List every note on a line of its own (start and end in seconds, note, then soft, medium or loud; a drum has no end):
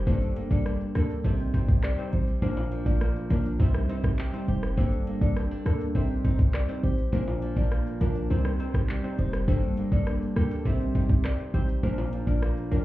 0.00 0.13 C3 medium
0.00 0.13 C4 medium
0.00 0.13 D#4 medium
0.00 0.95 G4 medium
0.07 0.47 G1 loud
0.07 1.31 G2 medium
0.07 0.47 G3 loud
0.07 0.48 A#3 medium
0.07 0.48 D4 medium
0.07 0.48 A4 loud
0.07 0.19 C5 loud
0.07 kick loud
0.07 shaker medium
0.07 maracas medium
0.21 shaker soft
0.21 maracas medium
0.36 1.31 A#3 medium
0.36 closed hi-hat medium
0.36 shaker medium
0.36 maracas medium
0.51 0.64 G1 loud
0.51 0.92 G3 medium
0.51 0.92 A#3 medium
0.51 0.92 D4 medium
0.51 0.92 A4 medium
0.51 0.63 D5 medium
0.51 kick medium
0.51 shaker medium
0.51 maracas medium
0.66 1.31 D4 medium
0.66 cross-stick medium
0.66 maracas medium
0.66 shaker medium
0.80 shaker medium
0.80 maracas medium
0.95 1.26 D2 medium
0.95 1.22 G3 medium
0.95 1.22 A#3 medium
0.95 1.22 D4 medium
0.95 1.31 A4 medium
0.95 1.22 A4 medium
0.95 1.07 A#4 medium
0.95 cross-stick medium
0.95 closed hi-hat medium
0.95 shaker medium
1.10 maracas medium
1.10 shaker medium
1.24 1.65 C2 loud
1.24 2.48 C3 medium
1.24 1.52 G3 loud
1.24 1.52 C4 medium
1.24 1.52 D#4 medium
1.24 1.52 C5 loud
1.24 kick medium
1.24 maracas medium
1.24 shaker medium
1.39 maracas medium
1.39 shaker medium
1.54 1.70 G3 medium
1.54 1.70 C4 medium
1.54 2.48 C4 medium
1.54 1.70 D#4 medium
1.54 1.70 C5 medium
1.54 kick loud
1.54 closed hi-hat medium
1.54 maracas medium
1.54 shaker soft
1.68 1.82 C2 medium
1.68 kick loud
1.68 shaker medium
1.68 maracas medium
1.83 2.48 G3 medium
1.83 1.95 D5 medium
1.83 cross-stick medium
1.83 clap medium
1.83 maracas medium
1.83 shaker medium
1.98 2.14 G3 medium
1.98 2.14 C4 medium
1.98 2.14 D#4 medium
1.98 2.14 C5 medium
1.98 shaker medium
1.98 maracas medium
2.13 2.40 A1 medium
2.13 2.48 D#4 medium
2.13 2.25 C5 medium
2.13 closed hi-hat medium
2.13 shaker soft
2.27 maracas medium
2.27 shaker medium
2.42 2.69 A#1 loud
2.42 3.66 A#2 medium
2.42 2.83 F3 loud
2.42 2.83 A#3 medium
2.42 2.83 D4 medium
2.42 2.83 A#4 loud
2.42 2.54 C5 loud
2.42 kick loud
2.42 shaker medium
2.42 maracas medium
2.57 high timbale medium
2.57 shaker soft
2.57 maracas medium
2.72 3.66 F3 medium
2.72 closed hi-hat medium
2.72 shaker medium
2.72 maracas medium
2.86 3.13 A1 medium
2.86 3.27 F3 medium
2.86 3.27 A#3 medium
2.86 3.27 D4 medium
2.86 3.27 A#4 medium
2.86 2.98 D5 medium
2.86 kick loud
2.86 shaker medium
2.86 maracas medium
3.01 3.66 A#3 medium
3.01 cross-stick medium
3.01 maracas medium
3.01 shaker medium
3.16 shaker medium
3.16 maracas medium
3.30 3.44 A#1 loud
3.30 3.57 F3 medium
3.30 3.57 A#3 medium
3.30 3.58 D4 medium
3.30 3.66 D4 medium
3.30 3.42 A#4 medium
3.30 3.58 A#4 medium
3.30 closed hi-hat loud
3.30 high timbale medium
3.30 shaker medium
3.45 maracas medium
3.45 shaker medium
3.60 4.15 C2 loud
3.60 4.83 C3 medium
3.60 3.87 G3 medium
3.60 3.87 C4 medium
3.60 3.87 D#4 medium
3.60 3.87 C5 loud
3.60 kick loud
3.60 maracas medium
3.60 shaker medium
3.74 cross-stick loud
3.74 maracas medium
3.74 shaker medium
3.89 4.05 G3 medium
3.89 4.05 C4 medium
3.89 4.83 D#4 medium
3.89 4.05 D#4 medium
3.89 4.05 C5 medium
3.89 closed hi-hat medium
3.89 maracas medium
3.89 shaker soft
4.04 kick loud
4.04 cross-stick loud
4.04 shaker medium
4.04 maracas medium
4.18 4.83 C4 medium
4.18 clap medium
4.18 maracas medium
4.18 shaker medium
4.33 4.49 G3 medium
4.33 4.49 C4 medium
4.33 4.49 D#4 medium
4.33 4.49 C5 medium
4.33 shaker medium
4.33 maracas soft
4.48 4.75 F1 medium
4.48 5.65 G4 medium
4.48 4.60 C5 medium
4.48 closed hi-hat medium
4.48 shaker soft
4.63 cross-stick loud
4.63 maracas medium
4.63 shaker medium
4.77 5.18 G1 loud
4.77 6.01 G2 medium
4.77 5.18 G3 medium
4.77 5.18 A#3 medium
4.77 5.18 D4 medium
4.77 5.18 A4 loud
4.77 4.89 C5 loud
4.77 kick loud
4.77 maracas medium
4.77 shaker medium
4.92 shaker soft
4.92 maracas medium
5.07 6.01 A#3 medium
5.07 closed hi-hat medium
5.07 maracas medium
5.07 shaker medium
5.21 5.35 G1 loud
5.21 5.62 G3 medium
5.21 5.62 A#3 medium
5.21 5.62 D4 medium
5.21 5.62 A4 medium
5.21 5.33 D5 medium
5.21 kick loud
5.21 shaker medium
5.21 maracas medium
5.36 5.51 C4 medium
5.36 cross-stick medium
5.36 maracas medium
5.36 shaker medium
5.51 6.01 D4 medium
5.51 shaker medium
5.51 maracas medium
5.66 5.96 D2 medium
5.66 5.93 G3 medium
5.66 5.93 A#3 medium
5.66 5.93 D4 medium
5.66 6.01 A4 medium
5.66 5.93 A4 medium
5.66 5.78 A#4 medium
5.66 cross-stick medium
5.66 closed hi-hat medium
5.66 shaker medium
5.80 maracas medium
5.80 shaker medium
5.95 6.35 C2 loud
5.95 7.19 C3 medium
5.95 6.22 G3 medium
5.95 6.22 C4 medium
5.95 6.22 D#4 medium
5.95 6.22 C5 loud
5.95 kick medium
5.95 maracas medium
5.95 shaker medium
6.10 maracas medium
6.10 shaker medium
6.24 6.40 G3 medium
6.24 6.40 C4 medium
6.24 7.19 D#4 medium
6.24 6.40 D#4 medium
6.24 6.41 C5 medium
6.24 kick loud
6.24 closed hi-hat medium
6.24 shaker soft
6.24 maracas medium
6.39 6.53 C2 medium
6.39 kick loud
6.39 shaker medium
6.39 maracas medium
6.54 7.19 C4 medium
6.54 6.66 D5 medium
6.54 cross-stick medium
6.54 clap medium
6.54 maracas medium
6.54 shaker medium
6.68 6.84 G3 medium
6.68 6.84 C4 medium
6.68 6.85 D#4 medium
6.68 6.85 C5 medium
6.68 shaker medium
6.68 maracas medium
6.83 7.10 A1 medium
6.83 7.19 G4 medium
6.83 6.95 C5 medium
6.83 closed hi-hat medium
6.83 shaker soft
6.98 maracas medium
6.98 shaker medium
7.12 7.40 A#1 loud
7.12 8.36 A#2 medium
7.12 7.53 F3 medium
7.12 7.53 A#3 medium
7.12 7.53 D4 medium
7.12 7.53 A#4 loud
7.12 7.25 C5 loud
7.12 kick loud
7.12 shaker medium
7.12 maracas medium
7.27 high timbale medium
7.27 shaker soft
7.27 maracas medium
7.42 8.36 F3 medium
7.42 closed hi-hat medium
7.42 shaker medium
7.42 maracas medium
7.57 7.84 A1 medium
7.57 7.97 F3 medium
7.57 7.98 A#3 medium
7.57 7.98 D4 medium
7.57 7.98 A#4 medium
7.57 7.69 D5 medium
7.57 kick loud
7.57 shaker medium
7.57 maracas medium
7.72 8.36 A#3 medium
7.72 cross-stick medium
7.72 maracas medium
7.72 shaker medium
7.86 shaker medium
7.86 maracas medium
8.01 8.14 A#1 loud
8.01 8.28 F3 medium
8.01 8.28 A#3 medium
8.01 8.36 D4 medium
8.01 8.28 D4 medium
8.01 8.13 A#4 medium
8.01 8.28 A#4 medium
8.01 closed hi-hat medium
8.01 high timbale medium
8.01 shaker medium
8.16 maracas medium
8.16 shaker medium
8.30 8.85 C2 loud
8.30 9.54 C3 medium
8.30 8.57 G3 loud
8.30 8.57 C4 medium
8.30 8.58 D#4 medium
8.30 8.58 C5 loud
8.30 maracas medium
8.30 shaker medium
8.45 cross-stick loud
8.45 maracas medium
8.45 shaker medium
8.60 8.76 G3 medium
8.60 8.76 C4 medium
8.60 9.54 C4 medium
8.60 8.76 D#4 medium
8.60 8.76 C5 medium
8.60 closed hi-hat medium
8.60 maracas medium
8.60 shaker soft
8.74 kick loud
8.74 cross-stick loud
8.74 shaker medium
8.74 maracas medium
8.89 10.54 G3 medium
8.89 clap medium
8.89 maracas medium
8.89 shaker medium
9.04 9.20 G3 medium
9.04 9.20 C4 medium
9.04 9.20 D#4 medium
9.04 9.20 C5 medium
9.04 shaker medium
9.04 maracas soft
9.19 9.46 F1 loud
9.19 9.54 D#4 medium
9.19 9.31 C5 medium
9.19 closed hi-hat medium
9.19 shaker soft
9.33 cross-stick loud
9.33 maracas medium
9.33 shaker medium
9.48 9.88 G1 loud
9.48 10.72 G2 medium
9.48 9.89 G3 loud
9.48 9.89 A#3 medium
9.48 9.89 D4 medium
9.48 9.89 A4 loud
9.48 9.60 C5 loud
9.48 kick loud
9.48 shaker medium
9.48 maracas medium
9.62 shaker soft
9.62 maracas medium
9.77 10.72 A#3 medium
9.77 closed hi-hat medium
9.77 shaker medium
9.77 maracas medium
9.92 10.05 G1 loud
9.92 10.33 G3 medium
9.92 10.33 A#3 medium
9.92 10.33 D4 medium
9.92 10.33 A4 medium
9.92 10.04 D5 medium
9.92 kick loud
9.92 shaker medium
9.92 maracas medium
10.07 10.72 D4 medium
10.07 cross-stick loud
10.07 shaker medium
10.07 maracas medium
10.21 shaker medium
10.21 maracas medium
10.36 10.67 D2 medium
10.36 10.63 G3 medium
10.36 10.63 A#3 medium
10.36 10.63 D4 medium
10.36 10.51 G4 medium
10.36 10.64 A4 medium
10.36 10.48 A#4 medium
10.36 cross-stick medium
10.36 closed hi-hat medium
10.36 shaker medium
10.51 10.72 A4 medium
10.51 maracas medium
10.51 shaker medium
10.65 11.06 C2 loud
10.65 11.89 C3 medium
10.65 10.93 G3 loud
10.65 10.93 C4 medium
10.65 10.93 D#4 medium
10.65 10.93 C5 loud
10.65 kick medium
10.65 maracas medium
10.65 shaker medium
10.81 maracas medium
10.81 shaker medium
10.95 11.11 G3 medium
10.95 11.11 C4 medium
10.95 11.89 D#4 medium
10.95 11.11 D#4 medium
10.95 11.11 C5 medium
10.95 kick loud
10.95 closed hi-hat medium
10.95 maracas medium
10.95 shaker soft
11.10 11.23 C2 medium
11.10 kick loud
11.10 shaker medium
11.10 maracas medium
11.24 11.89 C4 medium
11.24 11.36 D5 medium
11.24 cross-stick medium
11.24 clap medium
11.24 maracas medium
11.24 shaker medium
11.39 shaker medium
11.39 maracas soft
11.54 11.81 A1 medium
11.54 11.70 G3 medium
11.54 11.70 C4 medium
11.54 11.70 D#4 medium
11.54 11.89 G4 medium
11.54 11.66 C5 medium
11.54 11.70 C5 medium
11.54 closed hi-hat medium
11.54 shaker medium
11.68 maracas medium
11.68 shaker medium
11.83 12.10 A#1 loud
11.83 12.85 A#2 medium
11.83 12.24 F3 loud
11.83 12.24 A#3 medium
11.83 12.24 D4 medium
11.83 12.24 A#4 loud
11.83 11.95 C5 loud
11.83 kick loud
11.83 shaker medium
11.83 maracas medium
11.98 high timbale medium
11.98 maracas medium
11.98 shaker soft
12.13 12.85 F3 medium
12.13 closed hi-hat medium
12.13 maracas medium
12.13 shaker medium
12.27 12.54 A1 medium
12.27 12.68 F3 medium
12.27 12.68 A#3 medium
12.27 12.68 D4 medium
12.27 12.68 A#4 medium
12.27 12.39 D5 medium
12.27 kick loud
12.27 maracas medium
12.27 shaker medium
12.42 12.85 A#3 medium
12.42 cross-stick loud
12.42 maracas medium
12.42 shaker medium
12.57 shaker medium
12.57 maracas medium
12.71 12.85 A#1 loud
12.71 12.85 F3 medium
12.71 12.85 A#3 medium
12.71 12.85 D4 medium
12.71 12.84 A#4 medium
12.71 12.85 A#4 medium
12.71 closed hi-hat medium
12.71 high timbale medium
12.71 shaker medium